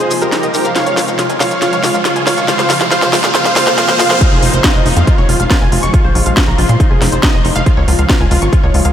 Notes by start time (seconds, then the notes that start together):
Already playing: C3 F3 G#3 G#4 C5, riser
0.00 G#4, closed hi-hat, shaker
0.11 F1 D#4, open hi-hat, shaker
0.22 F1 G4 A#4 C5, closed hi-hat, shaker
0.32 D#4, snare, closed hi-hat, shaker
0.43 F1 D#5, closed hi-hat, shaker
0.54 F1 D#4 G4 A#4, open hi-hat, shaker
0.65 F1 F5, closed hi-hat, shaker
0.75 C#3 F4 C#5 F5, snare, closed hi-hat, shaker
0.86 C#2 C#5, closed hi-hat, shaker
0.97 C#2 F4, snare, open hi-hat, shaker
1.08 C#2 F5, closed hi-hat, shaker
1.19 F4, snare, closed hi-hat, shaker
1.30 C#2 G#5, closed hi-hat, shaker
1.40 C#2 F4 C#5 F5, snare, open hi-hat, shaker
1.51 G#1 C#6, closed hi-hat, shaker
1.62 F4 C#5 F5, snare, closed hi-hat, shaker
1.73 C#2 C#5, closed hi-hat, shaker
1.83 C#2 F4, snare, open hi-hat, shaker
1.94 C#2 F5, closed hi-hat, shaker
2.05 F4, snare, closed hi-hat, shaker
2.16 C#2 G#5, closed hi-hat, shaker
2.27 C#2 F4 C#5 F5, snare, open hi-hat, shaker
2.37 C#2 C#6, closed hi-hat, shaker
2.48 C3 A#3 F4 C5 F5, snare, closed hi-hat, shaker
2.59 A#1 C5, snare, closed hi-hat, shaker
2.70 A#1 F4, snare, open hi-hat, shaker
2.81 A#1 F5, snare, closed hi-hat, shaker
2.91 F4 C5 F5, snare, closed hi-hat, shaker
3.02 A#1 C5, snare, closed hi-hat, shaker
3.13 A#1 F4, snare, open hi-hat, shaker
3.24 A#2 F5, snare, closed hi-hat, shaker
3.35 F4 C5 F5, snare, closed hi-hat, shaker
3.45 A#1 C5, snare, closed hi-hat, shaker
3.56 A#1 F4 C5 F5, snare, open hi-hat, shaker
3.67 A#1 C5, snare, closed hi-hat, shaker
3.78 F4 C5 F5, snare, closed hi-hat, shaker
3.89 A#1 C5, snare, closed hi-hat, shaker
3.99 A#1 F4 C5 F5, snare, open hi-hat, shaker
4.10 A#1 C5, snare, closed hi-hat, shaker
4.21 F3 G#3 D#4, kick, closed hi-hat
4.32 F1 G#4
4.43 F1 D#4, open hi-hat
4.53 F1 C5, closed hi-hat
4.64 D#4, kick, snare, closed hi-hat
4.75 F1 D#5
4.86 F1 D#4, open hi-hat
4.97 F2 F5, closed hi-hat
5.07 F4, kick, closed hi-hat
5.18 F1 C#5
5.29 F1 F4, open hi-hat
5.40 F1 F5, closed hi-hat
5.50 F4, kick, snare, closed hi-hat
5.61 F1 G#5
5.72 F1 F4, open hi-hat
5.83 F1 C#6, closed hi-hat
5.94 F4, kick, closed hi-hat
6.04 A#1 C5
6.15 A#1 F4, open hi-hat
6.26 A#1 F5, closed hi-hat
6.37 F4, kick, snare, closed hi-hat
6.48 A#1 A#5
6.58 A#1 F4, open hi-hat
6.69 A#2 C6, closed hi-hat
6.80 G#3 D#4, kick, closed hi-hat
6.91 F1 G#4
7.02 F1 D#4, snare, open hi-hat
7.12 F1 C5, closed hi-hat
7.23 D#4, kick, snare, closed hi-hat
7.34 F1 D#5
7.45 F1 D#4, open hi-hat
7.56 F1 F5, closed hi-hat
7.66 C#3 F4, kick, closed hi-hat
7.77 C#2 C#5
7.88 C#2 F4, open hi-hat
7.99 C#2 F5, closed hi-hat
8.09 F4, kick, snare, closed hi-hat
8.20 C#2 G#5
8.31 C#2 F4, open hi-hat
8.42 G#1 C#6, closed hi-hat
8.53 F4, kick, closed hi-hat
8.63 C#2 C#5
8.74 C#2 F4, open hi-hat
8.85 C#2 F5, closed hi-hat